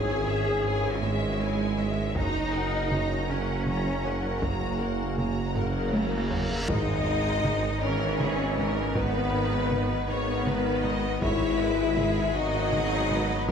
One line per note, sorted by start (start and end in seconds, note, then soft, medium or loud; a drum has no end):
0.00 2.12 G#1 medium
0.00 2.18 G#1 medium
0.00 0.12 G#2 medium
0.00 2.12 E3 medium
0.00 2.12 C#4 medium
0.00 0.27 E4 medium
0.00 1.01 G#4 loud
0.00 1.01 G#4 medium
0.00 0.27 C#5 medium
0.00 0.28 G#5 medium
0.28 0.50 G#2 medium
0.28 0.65 G#4 medium
0.28 0.65 E5 medium
0.65 0.87 G#2 medium
0.65 1.00 E4 medium
0.65 1.00 C#5 medium
0.65 1.00 G#5 medium
1.02 1.25 G#2 medium
1.02 2.16 G#3 medium
1.02 2.16 G#3 loud
1.02 1.41 G#4 medium
1.02 1.41 E5 medium
1.40 1.63 G#3 medium
1.40 1.78 E4 medium
1.40 1.79 C#5 medium
1.40 1.79 G#5 medium
1.78 2.01 G#3 medium
1.78 2.16 G#4 medium
1.78 2.16 E5 medium
2.16 6.45 F#1 medium
2.16 6.69 F#1 medium
2.16 2.39 F#2 medium
2.16 6.33 F#3 medium
2.16 6.33 C#4 medium
2.16 3.27 D#4 loud
2.16 3.30 D#4 loud
2.16 2.51 F#4 medium
2.16 2.51 C#5 medium
2.16 2.51 A#5 medium
2.16 taiko medium
2.53 2.77 F#2 medium
2.53 2.91 A#4 medium
2.53 2.92 A#4 medium
2.53 2.92 F#5 medium
2.91 3.15 F#2 medium
2.91 3.29 F#4 medium
2.91 3.29 C#5 medium
2.91 3.29 A#5 medium
2.91 taiko mid medium
3.29 3.52 F#2 medium
3.29 4.26 C#4 medium
3.29 4.43 C#4 medium
3.29 3.67 A#4 medium
3.29 3.67 F#5 medium
3.67 3.90 F#3 medium
3.67 4.02 F#4 medium
3.67 4.02 C#5 medium
3.67 4.03 A#5 medium
3.67 taiko mid medium
4.05 4.28 F#3 medium
4.05 4.42 A#4 medium
4.05 4.43 A#4 medium
4.05 4.43 F#5 medium
4.05 taiko mid soft
4.42 4.65 F#2 medium
4.42 5.54 A#3 medium
4.42 5.55 A#3 medium
4.42 4.80 F#4 medium
4.42 4.80 C#5 soft
4.42 4.80 A#5 medium
4.42 taiko medium
4.42 reverse cymbal medium
4.80 5.03 F#2 medium
4.80 5.18 A#4 medium
4.80 5.18 A#4 soft
4.80 5.18 F#5 soft
5.18 5.40 F#2 medium
5.18 5.53 F#4 soft
5.18 5.53 C#5 medium
5.18 5.53 A#5 soft
5.18 taiko mid medium
5.55 5.78 F#2 medium
5.55 6.65 C#3 medium
5.55 6.65 A#3 medium
5.55 5.93 A#4 medium
5.55 5.94 A#4 medium
5.55 5.93 F#5 soft
5.55 taiko low-mid medium
5.92 6.16 F#3 medium
5.92 6.31 F#4 medium
5.92 6.31 C#5 soft
5.92 6.31 A#5 soft
5.92 taiko high medium
6.31 6.54 F#3 medium
6.31 6.69 A#4 medium
6.31 6.69 A#4 soft
6.31 6.69 F#5 soft
6.31 taiko low medium
6.69 11.18 G#1 medium
6.69 7.69 G#1 medium
6.69 6.92 G#2 medium
6.69 7.82 G#3 medium
6.69 11.18 B3 medium
6.69 7.80 D#4 loud
6.69 11.18 D#4 medium
6.69 7.80 D#4 loud
6.69 7.82 D#5 medium
6.69 taiko medium
6.69 sub drop medium
7.07 7.29 G#2 medium
7.44 7.67 G#2 medium
7.44 taiko mid medium
7.81 8.82 G#1 medium
7.81 8.05 G#2 medium
7.81 8.93 E3 medium
7.81 8.95 C#4 medium
7.81 8.17 A#4 medium
7.81 8.95 C#5 medium
8.20 8.43 G#3 medium
8.20 8.58 G#4 medium
8.20 taiko mid medium
8.57 8.80 G#3 medium
8.57 8.94 A#4 medium
8.57 taiko mid soft
8.95 9.95 G#1 medium
8.95 9.18 G#2 medium
8.95 10.07 D#3 medium
8.95 10.06 B3 loud
8.95 10.06 B3 medium
8.95 10.06 B4 medium
8.95 10.08 B4 medium
8.95 taiko medium
9.33 9.56 G#2 medium
9.71 9.93 G#2 medium
9.71 taiko mid medium
10.08 11.08 G#1 medium
10.08 11.09 G#1 medium
10.08 10.31 G#2 loud
10.08 11.19 D#3 medium
10.08 11.19 B3 medium
10.08 11.20 B3 medium
10.08 11.19 B4 medium
10.08 10.46 C#5 medium
10.46 10.69 G#3 medium
10.46 10.84 B4 medium
10.46 taiko mid medium
10.84 11.06 G#3 medium
10.84 11.22 D#5 medium
10.84 taiko mid soft
11.21 13.52 G#1 medium
11.21 12.22 G#1 medium
11.21 11.44 G#2 medium
11.21 13.52 F#3 medium
11.21 12.33 G#3 medium
11.21 13.52 B3 medium
11.21 12.35 E4 loud
11.21 12.35 E4 medium
11.21 11.59 C#5 medium
11.21 12.32 E5 medium
11.21 taiko loud
11.59 11.82 G#2 medium
11.59 11.97 B4 medium
11.97 12.20 G#2 medium
11.97 12.34 G#4 medium
11.97 taiko mid medium
12.35 13.35 G#1 medium
12.35 12.57 G#2 medium
12.35 13.48 F#3 loud
12.35 13.48 D#4 medium
12.35 13.31 D#4 loud
12.35 12.73 F#4 medium
12.35 13.48 D#5 loud
12.73 12.95 G#3 medium
12.73 13.10 G#4 medium
12.73 taiko mid medium
13.10 13.33 G#3 medium
13.10 13.48 B4 medium
13.10 taiko mid soft
13.48 13.52 G#1 medium
13.48 13.52 G#2 medium
13.48 13.52 E3 loud
13.48 13.52 C#4 medium
13.48 13.52 C#4 loud
13.48 13.52 A#4 medium